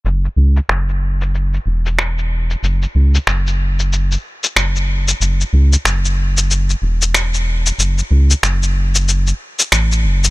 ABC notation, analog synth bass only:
X:1
M:4/4
L:1/8
Q:"Swing 16ths" 1/4=93
K:F#m
V:1 name="Analog synth bass" clef=bass
F,,, C,, F,,,3 E,,,3 | F,,, C,, F,,,3 z F,,,2 | F,,, C,, F,,,3 E,,,3 | F,,, C,, F,,,3 z A,,, F,,, |]